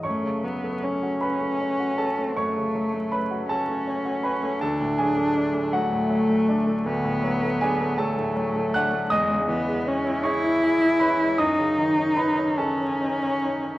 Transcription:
X:1
M:12/8
L:1/16
Q:3/8=53
K:F#m
V:1 name="Grand piano"
[cc']6 [Bb]4 [Aa]2 [cc']4 [Bb]2 [Aa]4 [Bb]2 | [Aa]2 [Gg]4 [Ff]8 z2 [Gg]2 [Aa]4 [ff']2 | [K:C#m] [dd']6 [cc']4 [Bb]2 [dd']4 [Bb]2 [Aa]6 |]
V:2 name="Grand piano"
F,, C, F, A, C F C A, C F C A, F,, C, F, A, C F C A, C F C A, | D,, A,, F, A, D A, F, A,, F, A, D A, D,, A,, F, A, D A, F, A,, F, A, D A, | [K:C#m] E,, C, E, G, C E G E G E C G, F,, C, D, C D C D C D C D C |]
V:3 name="Cello"
A,2 B,2 C8 A,6 C6 | D6 A,6 B,6 A,6 | [K:C#m] G,2 B,2 C2 E6 D6 C6 |]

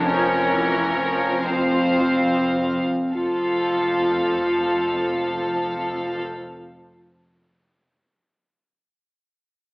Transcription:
X:1
M:6/8
L:1/8
Q:3/8=36
K:F
V:1 name="Violin section"
_d3 f2 z | f6- | f6 |]
V:2 name="Violin section"
B3 c2 z | A6- | A6 |]
V:3 name="Clarinet"
_D3 C3 | F6- | F6 |]
V:4 name="Viola section" clef=bass
F, E, F, F,2 z | F,6- | F,6 |]
V:5 name="Cello section" clef=bass
F,,4- F,, z | F,,6- | F,,6 |]
V:6 name="Double bass section" clef=bass
F,,,4- F,,, z | F,,,6- | F,,,6 |]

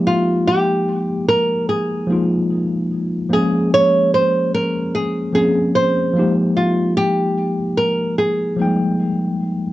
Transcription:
X:1
M:4/4
L:1/16
Q:"Swing 16ths" 1/4=74
K:Fm
V:1 name="Nylon-string guitar"
F2 G4 B2 A6 z2 | A2 d2 c2 B2 A2 A2 c3 z | F2 G4 B2 A6 z2 |]
V:2 name="Tine electric piano"
[F,A,B,EG]4- [F,A,B,EG] z4 z [F,A,B,EF]6 | [F,A,B,DA]6- [F,A,B,DA] z3 [F,B,CDA]4 [F,G,A,B,EG]2- | [F,G,A,B,EG]4- [F,G,A,B,EG] z4 z [F,G,A,B,Eg]6 |]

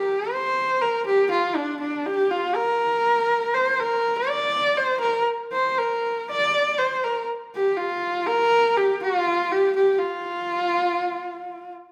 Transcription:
X:1
M:4/4
L:1/8
Q:1/4=121
K:none
V:1 name="Horsehead fiddle"
G c2 _B G F D D | G F _B4 c B- | _B d2 c B z c B- | _B d2 c B z G F- |
F _B2 G F2 G G | F6- F z |]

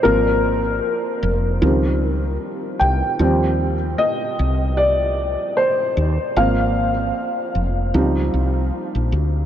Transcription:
X:1
M:4/4
L:1/16
Q:"Swing 16ths" 1/4=76
K:Eb
V:1 name="Felt piano"
B12- B2 g2- | g4 e4 d4 c4 | f12- f2 z2 |]
V:2 name="Felt piano" clef=bass
[F,B,C]2 z6 [E,F,G,C]8 | [F,G,C]2 z12 z2 | [F,B,C]2 z6 [F,G,CE]8 |]
V:3 name="Fretless electric bass" clef=bass
A,,,4 z2 F,,,2 _D,,4 z2 C,, z | E,,4 z2 C,,4- C,, z3 E,, z | A,,,4 z2 F,,,2 _D,,2 C,,2 z B,,, =D,,2 |]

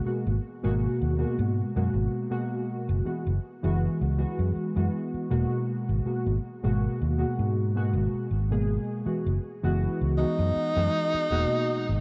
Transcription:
X:1
M:4/4
L:1/16
Q:"Swing 16ths" 1/4=80
K:F#mix
V:1 name="Tenor saxophone"
z16 | z16 | z16 | z6 D8- D2 |]
V:2 name="Synth keys"
[B,,G,A,F] z2 [B,,G,A,F]3 [B,,G,A,F]3 [B,,G,A,F]3 [B,,G,A,F]4 | [E,G,B,F] z2 [E,G,B,F]3 [E,G,B,F]3 [E,G,B,F]3 [B,,G,A,F]4 | [B,,G,A,F] z2 [B,,G,A,F]3 [B,,G,A,F]3 [B,,G,A,F]3 z [B,,G,A,G]3 | [E,G,B,F] z2 [E,G,B,F]3 [E,G,B,F]3 [E,G,B,F]3 [B,,G,A,F]4 |]
V:3 name="Fingered electric bass" clef=bass
z G,,, z G,,, z D,, z G,, z F,, G,,, z4 F,,, | z F,,, z F,,, z C,, z F,, z F,, z2 E,,, z2 G,,, | z G,,, z G,,, z D,, z G,,3 G,,, z G,,,2 z2 | z F,,, z F,,, z C,, z F,, z F,, z2 E,,, z2 G,,, |]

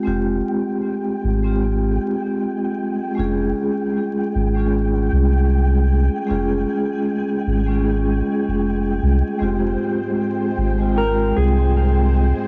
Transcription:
X:1
M:4/4
L:1/16
Q:"Swing 16ths" 1/4=77
K:Fm
V:1 name="Electric slide guitar"
z16 | z16 | z16 | z8 B2 A6 |]
V:2 name="Synth texture"
[A,g]16- | [A,g]16- | [A,g]16- | [A,g]16 |]
V:3 name="String machine"
z16 | z16 | z16 | [A,c]16 |]
V:4 name="Vibraphone"
[A,CFG]6- [A,CFG] [A,CFG]8- [A,CFG] | [A,DFA]6- [A,DFA] [A,DFA]8- [A,DFA] | [A,DFA]6- [A,DFA] [A,DFA]8- [A,DFA] | [A,CFG]6- [A,CFG] [A,CFg]8- [A,CFg] |]
V:5 name="Sub bass" clef=bass
F,,,2 z4 A,,,4 z6 | F,,,2 z4 A,,,4 C,,4- C,, z | F,,,2 z4 A,,,4 z F,,,3 C,, z | F,,,2 z4 A,,,4 C,,4- C,, z |]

